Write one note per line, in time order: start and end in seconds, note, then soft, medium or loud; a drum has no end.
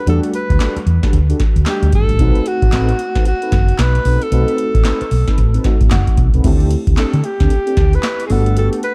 0.06 0.18 E2 loud
0.06 1.63 G3 medium
0.06 1.63 A3 medium
0.06 0.32 D4 medium
0.06 1.64 D4 medium
0.06 0.32 F#4 medium
0.06 1.64 F#4 medium
0.06 0.32 G4 medium
0.06 0.32 A4 loud
0.06 0.21 A4 medium
0.06 closed hi-hat medium
0.23 closed hi-hat medium
0.34 0.84 B4 medium
0.34 closed hi-hat medium
0.50 0.57 D2 medium
0.50 kick medium
0.50 closed hi-hat medium
0.60 0.77 D4 medium
0.60 0.77 F#4 medium
0.60 0.78 G4 medium
0.60 0.78 A4 medium
0.60 snare loud
0.60 clap medium
0.60 closed hi-hat medium
0.76 muted fretless electric bass stroke medium
0.76 closed hi-hat medium
0.86 0.98 E2 medium
0.86 closed hi-hat medium
1.03 1.15 D4 medium
1.03 1.15 F#4 medium
1.03 1.15 G4 medium
1.03 1.15 A4 medium
1.03 kick medium
1.03 snare medium
1.03 closed hi-hat medium
1.13 1.32 D2 loud
1.13 closed hi-hat medium
1.29 1.41 D4 medium
1.29 1.41 F#4 medium
1.29 1.42 G4 medium
1.29 1.42 A4 medium
1.29 closed hi-hat medium
1.40 kick loud
1.40 snare medium
1.40 closed hi-hat medium
1.56 1.63 D2 medium
1.56 closed hi-hat medium
1.66 2.20 G3 medium
1.66 2.18 A3 soft
1.66 2.20 D4 soft
1.66 2.20 G4 medium
1.66 1.92 G4 medium
1.66 snare loud
1.66 clap loud
1.66 closed hi-hat medium
1.82 1.90 D2 medium
1.82 closed hi-hat medium
1.93 2.04 G1 medium
1.93 2.49 A4 loud
1.93 kick loud
1.93 closed hi-hat medium
2.09 2.16 A1 medium
2.09 closed hi-hat medium
2.19 2.31 B1 loud
2.19 4.28 A3 medium
2.19 2.44 C4 medium
2.19 4.28 C4 medium
2.19 2.44 D#4 medium
2.19 4.29 D#4 medium
2.19 4.29 F#4 medium
2.19 2.44 A4 medium
2.19 2.45 B4 loud
2.19 kick loud
2.19 closed hi-hat medium
2.35 closed hi-hat medium
2.46 3.27 F#4 medium
2.46 closed hi-hat medium
2.62 2.70 A1 medium
2.62 kick medium
2.62 closed hi-hat medium
2.72 2.91 A1 medium
2.72 2.90 C4 medium
2.72 2.90 D#4 medium
2.72 2.90 A4 medium
2.72 2.90 B4 medium
2.72 snare loud
2.72 clap medium
2.72 closed hi-hat medium
2.89 closed hi-hat medium
2.99 closed hi-hat medium
3.15 3.27 C4 medium
3.15 3.27 D#4 medium
3.15 3.27 A4 medium
3.15 3.27 B4 medium
3.15 kick medium
3.15 snare medium
3.15 closed hi-hat medium
3.25 3.82 F#4 medium
3.25 closed hi-hat medium
3.42 3.54 C4 medium
3.42 3.54 D#4 medium
3.42 3.54 A4 medium
3.42 3.54 B4 medium
3.42 closed hi-hat medium
3.52 3.71 F#1 medium
3.52 kick medium
3.52 snare medium
3.52 closed hi-hat medium
3.68 closed hi-hat medium
3.79 3.97 B1 medium
3.79 4.24 B4 loud
3.79 snare loud
3.79 clap loud
3.79 closed hi-hat medium
3.95 closed hi-hat medium
4.05 4.17 B1 medium
4.05 4.23 C4 medium
4.05 4.23 D#4 medium
4.05 4.23 A4 medium
4.05 4.23 B4 medium
4.05 open hi-hat medium
4.22 5.92 A4 loud
4.22 closed hi-hat medium
4.31 4.43 B1 loud
4.31 5.62 A3 medium
4.31 4.57 C4 medium
4.31 5.62 C4 medium
4.31 4.57 D#4 medium
4.31 5.62 D#4 medium
4.31 5.63 F#4 medium
4.31 4.57 A4 medium
4.31 4.57 B4 loud
4.31 closed hi-hat medium
4.48 closed hi-hat medium
4.58 closed hi-hat medium
4.75 4.82 A1 medium
4.75 kick medium
4.75 closed hi-hat medium
4.85 5.02 C4 medium
4.85 5.02 D#4 medium
4.85 5.02 A4 medium
4.85 5.02 B4 medium
4.85 snare loud
4.85 clap medium
4.85 closed hi-hat medium
5.01 muted fretless electric bass stroke soft
5.01 closed hi-hat medium
5.11 5.23 B1 medium
5.11 open hi-hat medium
5.27 5.40 C4 medium
5.27 5.40 D#4 medium
5.27 5.40 A4 medium
5.27 5.40 B4 medium
5.27 kick medium
5.27 snare medium
5.27 closed hi-hat medium
5.38 5.57 A1 loud
5.38 closed hi-hat medium
5.54 5.66 C4 medium
5.54 5.66 D#4 medium
5.54 5.66 A4 medium
5.54 5.66 B4 medium
5.54 closed hi-hat soft
5.64 6.42 A3 medium
5.64 6.43 C4 medium
5.64 6.45 D#4 medium
5.64 6.45 F#4 medium
5.64 kick loud
5.64 snare medium
5.64 closed hi-hat medium
5.81 5.88 A1 medium
5.81 kick medium
5.81 closed hi-hat medium
5.91 6.03 F#1 medium
5.91 6.41 F#5 medium
5.91 snare loud
5.91 clap loud
5.91 closed hi-hat medium
6.07 kick medium
6.07 closed hi-hat medium
6.17 6.29 B1 medium
6.17 kick loud
6.17 closed hi-hat medium
6.34 6.41 C2 medium
6.34 6.43 C4 medium
6.34 6.46 D#4 medium
6.34 6.43 A4 medium
6.34 6.46 B4 medium
6.34 closed hi-hat medium
6.44 6.74 D2 loud
6.44 8.26 A3 medium
6.44 6.69 C4 medium
6.44 8.27 C4 medium
6.44 6.69 D4 medium
6.44 8.27 E4 medium
6.44 6.69 G4 medium
6.44 8.27 G4 medium
6.44 6.69 A4 loud
6.44 kick loud
6.44 closed hi-hat medium
6.44 crash medium
6.60 closed hi-hat medium
6.71 closed hi-hat medium
6.87 6.94 D2 medium
6.87 kick loud
6.87 closed hi-hat medium
6.97 7.15 C4 medium
6.97 7.15 D4 medium
6.97 7.15 G4 medium
6.97 7.15 A4 medium
6.97 7.27 A4 medium
6.97 muted fretless electric bass stroke soft
6.97 snare loud
6.97 clap medium
6.97 closed hi-hat medium
7.13 7.21 D3 loud
7.13 closed hi-hat medium
7.24 7.96 G4 medium
7.24 closed hi-hat medium
7.40 7.48 D2 medium
7.40 7.52 C4 medium
7.40 7.52 D4 medium
7.40 7.52 G4 medium
7.40 7.52 A4 medium
7.40 kick medium
7.40 snare medium
7.40 closed hi-hat medium
7.50 closed hi-hat medium
7.66 7.79 C4 medium
7.66 7.79 D4 medium
7.66 7.79 G4 medium
7.66 7.79 A4 medium
7.66 closed hi-hat medium
7.77 7.96 D2 medium
7.77 kick loud
7.77 snare medium
7.77 closed hi-hat medium
7.93 8.26 B4 medium
7.93 closed hi-hat medium
8.03 snare loud
8.03 clap loud
8.03 closed hi-hat medium
8.20 closed hi-hat medium
8.26 8.68 G1 medium
8.26 8.95 A3 medium
8.26 8.47 B3 medium
8.26 8.47 F#4 medium
8.26 8.47 G4 medium
8.26 8.33 G#4 medium
8.26 8.48 A4 medium
8.26 open hi-hat medium
8.31 8.95 B3 medium
8.31 8.95 D4 medium
8.31 8.57 A4 medium
8.31 8.95 F#5 medium
8.46 closed hi-hat medium
8.56 8.81 B3 medium
8.56 8.81 F#4 medium
8.56 8.82 G4 medium
8.56 8.82 A4 loud
8.56 8.70 A4 medium
8.56 closed hi-hat medium
8.73 closed hi-hat medium
8.83 8.95 B4 loud
8.83 closed hi-hat medium